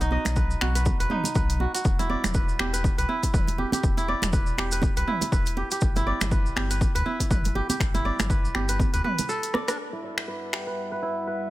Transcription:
Already playing: B1 F#4 B4
0.01 D#4, closed hi-hat, muted conga, cabasa
0.11 D#5, high conga
0.25 B1, finger snap, closed hi-hat, mid tom, low conga, cabasa
0.36 B4, kick, muted conga, cabasa
0.51 cabasa
0.61 B1 F#4, finger snap, high conga
0.75 B4, closed hi-hat, cabasa
0.85 kick, muted conga, high conga, cabasa
1.00 F#1 B4, closed hi-hat, cabasa
1.10 D#4, mid tom, high conga
1.24 closed hi-hat, muted conga, low conga, cabasa
1.35 B1 B4, kick, cabasa
1.50 closed hi-hat, cabasa
1.60 F#4, muted conga
1.74 F#4, closed hi-hat, cabasa
1.85 E1, kick, cabasa
1.99 E4, closed hi-hat, muted conga, low conga, cabasa
2.10 D5, high conga
2.24 E1, finger snap, closed hi-hat, mid tom, low conga, cabasa
2.34 B4, kick, muted conga, cabasa
2.49 cabasa
2.59 E1 G4, finger snap, high conga
2.73 B4, closed hi-hat, cabasa
2.84 kick, muted conga, cabasa
2.98 B1 B4, closed hi-hat, cabasa
3.09 E4, high conga
3.23 kick, closed hi-hat, muted conga, cabasa
3.33 E1 B4, kick, mid tom, cabasa
3.47 closed hi-hat, low conga, cabasa
3.58 G4, muted conga, high conga
3.72 G4, closed hi-hat, high conga, cabasa
3.83 E1, kick, cabasa
3.97 E4, closed hi-hat, muted conga, cabasa
4.08 D5, high conga
4.22 E1, finger snap, closed hi-hat, mid tom, low conga, cabasa
4.33 B4, kick, muted conga, cabasa
4.46 cabasa
4.58 E1 G4, finger snap, high conga
4.71 B4, closed hi-hat, cabasa
4.82 kick, muted conga, high conga, cabasa
4.97 B1 B4, closed hi-hat, cabasa
5.07 E4, mid tom, high conga
5.21 closed hi-hat, muted conga, low conga, cabasa
5.32 E1 B4, kick, cabasa
5.46 closed hi-hat, cabasa
5.57 G4, muted conga
5.71 G4, closed hi-hat, cabasa
5.81 G1, kick, cabasa
5.96 E4, closed hi-hat, muted conga, low conga, cabasa
6.07 D5, high conga
6.21 G1, finger snap, closed hi-hat, mid tom, low conga, cabasa
6.31 B4, kick, muted conga, cabasa
6.46 cabasa
6.56 G1 G4, finger snap, high conga
6.70 B4, closed hi-hat, cabasa
6.81 kick, muted conga, cabasa
6.95 D2 B4, closed hi-hat, cabasa
7.06 E4, high conga
7.20 kick, closed hi-hat, muted conga, cabasa
7.31 G1 B4, kick, mid tom, cabasa
7.45 closed hi-hat, low conga, cabasa
7.55 G4, muted conga, high conga
7.69 G4, closed hi-hat, high conga, cabasa
7.80 G1, finger snap, kick, cabasa
7.94 E4, closed hi-hat, muted conga, low conga, cabasa
8.05 D5, high conga
8.19 G1, finger snap, closed hi-hat, mid tom, low conga, cabasa
8.30 B4, kick, muted conga, cabasa
8.45 cabasa
8.55 G1 G4, finger snap, high conga
8.69 B4, closed hi-hat, cabasa
8.79 kick, muted conga, high conga, cabasa
8.93 D2 B4, closed hi-hat, cabasa
9.04 B4, mid tom, high conga
9.19 closed hi-hat, muted conga, low conga, cabasa
9.29 A4, cabasa
9.43 closed hi-hat, cabasa
9.54 D5, cross-stick, muted conga
9.68 D4, cross-stick, closed hi-hat, cabasa
9.79 G3 B4 E5 F#5
9.93 E4
10.03 D5
10.18 finger snap
10.28 B4
10.53 G4, finger snap
10.67 B4
10.92 B4
11.02 E4
11.27 B4

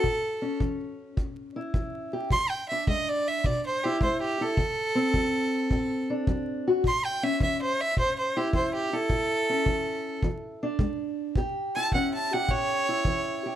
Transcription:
Already playing: A4
0.04 A2, kick
0.42 C#4
0.60 E3, kick
1.17 A2, kick
1.56 E4
1.74 E3, kick
2.13 G4
2.31 E3 C6, kick
2.49 G5
2.69 D4 E5
2.87 G#3 D#5, kick
3.08 D5
3.27 E5
3.44 B2 D5, kick
3.66 C5
3.84 E4 G4
4.01 G#3 C5, kick
4.21 G4
4.41 E4 A4
4.57 D3, kick
4.95 C4
5.14 F#3, kick
5.71 A2, kick
6.10 D4
6.27 F#3, kick
6.67 F#4
6.84 A2 C6, kick
7.05 G5
7.23 C#4 E5
7.40 E3 E5, kick
7.61 C5
7.81 E5
7.97 A2 C5, kick
8.18 C5
8.37 E4 G4
8.53 E3 C5, kick
8.74 G4
8.93 E4 A4
9.10 A2, kick
9.50 C#4
9.66 E3, kick
10.22 E3, kick
10.63 D4
10.79 G#3, kick
11.36 A2 G4, kick
11.75 E4 A5
11.92 E3 C#4 F#5, kick
12.14 A5
12.33 G4 F#5
12.49 A2 C#5, kick
12.89 E4
13.05 E3, kick
13.46 G4

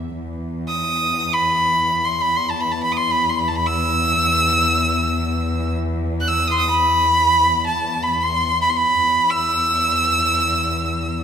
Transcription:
Already playing: E2
0.20 E2
0.68 D#6
1.33 B5
2.05 C6
2.21 B5
2.36 C6
2.50 A5
2.60 B5
2.71 A5
2.83 B5
2.92 D#6
2.97 C6
3.11 B5
3.29 C6
3.39 B5
3.48 A5
3.56 B5
3.66 E6
6.20 F#6
6.28 E6
6.47 C6 D#6
6.58 D#6
6.68 B5
7.66 A5
8.03 B5
8.22 C6
8.61 B5
8.70 C6
8.77 B5
9.07 E2
9.30 E6

